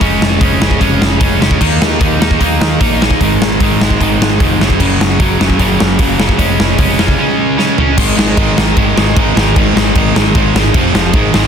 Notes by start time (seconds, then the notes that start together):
0.00 F1 C#3 G#3 C#4, kick, open hi-hat
0.21 F1, snare
0.40 F1 C#3 G#3 C#4, kick, open hi-hat
0.61 F1 C#3 G#3 C#4, snare
0.71 kick
0.80 F1 C#3 G#3 C#4, kick, open hi-hat
1.01 F1, snare
1.20 F1 C#3 G#3 C#4, kick, open hi-hat
1.40 F1 C#3 G#3 C#4, snare
1.51 kick
1.60 D#2 D#3 A#3 D#4, kick, crash
1.81 D#2, snare
2.00 D#2 D#3 A#3 D#4, kick, open hi-hat
2.20 D#2 D#3 A#3 D#4, snare
2.31 kick
2.40 D#2 D#3 A#3 D#4, kick, open hi-hat
2.60 D#2, snare
2.80 A#1 D#3 A#3 D#4, kick, open hi-hat
3.01 D#3 A#3 D#4, snare
3.11 kick
3.21 G#1 G#2 D#3 G#3, kick, open hi-hat
3.41 G#1, snare
3.60 G#1 G#2 D#3 G#3, kick, open hi-hat
3.81 G#1 G#2 D#3 G#3, snare
3.90 kick
4.01 G#1 G#2 D#3 G#3, kick, open hi-hat
4.21 G#1, snare
4.40 F1 G#2 D#3 G#3, kick, open hi-hat
4.60 F#1 F#2 C#3 F#3, snare
4.70 kick
4.80 F#1 F#2 C#3 F#3, kick, crash
5.00 F#1, snare
5.19 F#1 F#2 C#3 F#3, kick, open hi-hat
5.39 F#1 F#2 C#3 F#3, snare
5.50 kick
5.59 F#1 F#2 C#3 F#3, kick, open hi-hat
5.80 F#1, snare
5.99 F#1 F#2 C#3 F#3, kick, open hi-hat
6.19 F#2 C#3 F#3, snare
6.29 kick
6.37 F1 C#3 G#3 C#4, kick, open hi-hat
6.59 F1, snare
6.78 F1 C#3 G#3 C#4, kick, open hi-hat
6.98 F1 C#3 G#3 C#4, snare
7.08 kick
7.19 C#3 G#3 C#4
7.58 C#3 G#3 C#4, snare
7.77 C#3 G#3 C#4, floor tom
7.97 G#1 G#2 D#3 G#3, kick, crash
8.17 G#1 G#2 D#3 G#3, snare
8.37 G#1 G#2 D#3 G#3, kick, crash
8.57 G#1 G#2 D#3 G#3, snare
8.76 G#1 G#2 D#3 G#3, kick, crash
8.96 G#1 G#2 D#3 G#3, snare
9.15 G#1 G#2 D#3 G#3, kick, crash
9.36 G#1 G#2 D#3 G#3, snare
9.56 G#1 G#2 D#3 G#3, kick, crash
9.75 G#1 G#2 D#3 G#3, snare
9.95 G#1 G#2 D#3 G#3, kick, crash
10.15 G#1 G#2 D#3 G#3, snare
10.35 G#1 G#2 D#3 G#3, kick, crash
10.54 G#1 G#2 D#3 G#3, snare
10.74 F1 F2 C3 F3, kick, crash
10.93 F1 F2 C3 F3, snare
11.13 G#1 G#2 D#3 G#3, kick, crash
11.33 G#1 G#2 D#3 G#3, snare